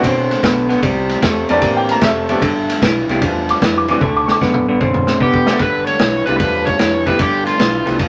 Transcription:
Already playing: F#4
0.03 B2 D3 C4, kick, snare, ride
0.31 snare, ride
0.43 B1 D3 B3, kick, snare, ride
0.69 D3 B3, snare, ride
0.83 C2 C3 G3, kick, snare, ride
1.09 snare, ride
1.22 E2 C3 A3, kick, snare, ride
1.49 F2 C3 E3 A3 C4 D4 G4 A#4 D5, snare, ride
1.62 A2 C3 A#3, kick, snare, ride
1.77 G5
1.89 A#5, snare, ride
2.01 F1 C3 A3 E5, kick, snare, ride
2.29 C3 F3 A3 B3 D4 G4, snare, ride
2.42 G1 G2 D3, kick, ride
2.70 snare, ride
2.82 B1 G2 E3, kick, snare, ride
3.08 C2 G2 E3 A3 B3 D4 F4 G4, snare, ride
3.22 E2 G2 F3, kick, snare, ride
3.49 D6, snare, ride
3.61 F2 G2 E3, kick, snare, ride
3.78 D6
3.88 G2 E3 A3 C4 D4 F#4 D6, snare, ride
4.01 D2 D3 A3, kick, high tom
4.17 D6
4.26 C#6, snare
4.32 D6
4.41 F#2 D3 B3, kick, snare
4.54 mid tom
4.67 G2 D3 B3
4.80 B2 D3 C4, kick, mid tom
4.94 mid tom
5.07 snare
5.20 C3 D3 B3 G4, kick
5.34 kick
5.46 D3 F3 A3 B3 D4 G4, snare
5.59 G1 G2 D3 A#4 B4, kick, snare, ride
5.87 C#5, snare, ride
5.99 B1 G2 E3, snare, ride
6.26 C2 G2 E3 A3 B3 D4 F4 G4 B4, snare, ride
6.39 E2 G2 F3 B4, kick, snare, ride
6.65 C#5, kick, snare, ride
6.79 F2 G2 E3, snare, ride
7.05 G2 E3 F3 A3 B3 D4 G4 B4, kick, snare, ride
7.19 G1 G2 D3 G4, kick, snare, ride
7.47 F4, snare, ride
7.58 B1 G2 E3, snare, ride
7.85 C2 G2 E3 F3 A3 B3 D4 G4, snare, ride
7.99 E2 G2 F3, kick, snare, ride

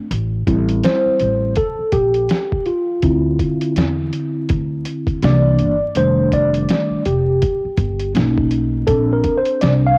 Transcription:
0.11 A1, closed hi-hat
0.47 A1 G3 C4 E4, kick, closed hi-hat
0.68 closed hi-hat
0.83 C5, snare, closed hi-hat
1.06 muted upright bass stroke
1.19 A1, closed hi-hat
1.56 A4, kick, closed hi-hat
1.79 muted upright bass stroke
1.92 A#1 G4, kick, closed hi-hat
2.14 closed hi-hat
2.29 snare, closed hi-hat
2.52 kick
2.66 F4, closed hi-hat
3.02 D2 D3 C4 E4, kick, closed hi-hat
3.39 kick, closed hi-hat
3.61 closed hi-hat
3.76 E2, snare, closed hi-hat
4.13 closed hi-hat
4.49 D2, kick, closed hi-hat
4.85 closed hi-hat
5.07 kick, closed hi-hat
5.22 C2 E3 A#3 D4 D5, snare, closed hi-hat
5.59 G1, closed hi-hat
5.95 F1 D#3 G3 A3 D4 C5, closed hi-hat
6.32 D5, kick, closed hi-hat
6.54 closed hi-hat
6.69 snare, closed hi-hat
6.91 muted upright bass stroke
7.05 F1 G4, closed hi-hat
7.42 kick, closed hi-hat
7.65 muted upright bass stroke
7.77 G1, kick, closed hi-hat
8.00 closed hi-hat
8.14 B1 A#3 C#4 D#4, snare, closed hi-hat
8.38 kick
8.51 closed hi-hat
8.87 A#1 C4 D4 A4, kick, closed hi-hat
9.13 A#4
9.24 kick, closed hi-hat
9.38 C5
9.46 closed hi-hat
9.61 C2 D5, snare, closed hi-hat
9.87 F5

